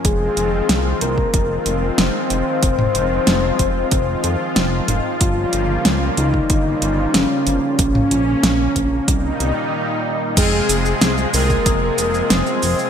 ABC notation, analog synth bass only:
X:1
M:4/4
L:1/8
Q:1/4=93
K:Fm
V:1 name="Analog synth bass" clef=bass
F,,, F,,, C,, C,, F,,, F,,, F,,, F,,, | F,,, F,,, F,,, F,,, F,,, F,, F,,, F,,, | G,,, G,,, D,, D,, G,,, G,,, G,,, G,,, | B,,, B,,, B,,, B,,, C,, C,, z2 |
F,,, F,,, C,, C,, F,,, F,,, F,,, F,,, |]